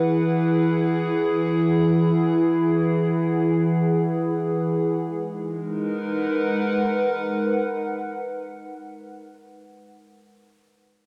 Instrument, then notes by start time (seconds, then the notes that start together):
ambient pad
Already playing: E3 E4 G#4 B4 F#5
5.03 G#3
5.17 D#4
5.27 A#4
5.40 B4
5.52 F#5